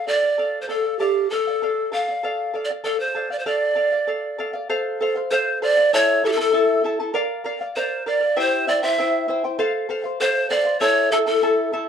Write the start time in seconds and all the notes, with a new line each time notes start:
0.07 A4 D5 F5
0.23 D5 F5
0.38 A4 D5 F5
0.61 C5
0.69 A4 D5 F5
0.84 D5 F5
0.99 G4 A4 D5 F5
1.30 A4 D5 F5
1.47 D5 F5
1.62 A4 D5 F5
1.92 A4 D5 F5
2.08 D5 F5
2.23 A4 D5 F5
2.54 A4 D5 F5
2.65 D5
2.70 D5 F5
2.84 A4 D5 F5
3.00 C5
3.15 A4 D5 F5
3.30 D5 F5
3.39 C5
3.46 A4 D5 F5
3.75 A4 D5 F5
3.92 D5 F5
4.07 A4 D5 F5
4.38 A4 D5 F5
4.53 D5 F5
4.69 A4 C5 F5
5.01 A4 C5 F5
5.16 C5 F5
5.31 A4 C5 F5
5.62 A4 C5 D5 F5
5.77 C5 F5
5.93 E4 A4 C#5 E5 A5
6.24 E4 G4 A4 E5 A5
6.32 A4
6.37 E4 A4 A5
6.53 E4 A4 E5 A5
6.84 E4 A4 E5 A5
7.00 E4 A4 A5
7.14 A#4 D5 F5
7.44 A#4 D5 F5
7.61 D5 F5
7.76 A#4 C5 D5 F5
8.06 A#4 D5 F5
8.20 D5 F5
8.36 E4 G4 C5 E5 G5
8.67 E4 C5 D5 E5 G5
8.83 E4 C5 E5 G5
8.98 E4 C5 E5 G5
9.28 E4 C5 E5 G5
9.44 E4 C5 G5
9.59 A4 C5 F5
9.89 A4 C5 F5
10.04 C5 F5
10.20 A4 C5 F5
10.50 A4 C5 D5 F5
10.65 C5 F5
10.80 E4 A4 C#5 E5 A5
11.12 E4 A4 E5 A5
11.26 E4 A4 A5
11.42 E4 A4 E5 A5
11.72 E4 A4 E5 A5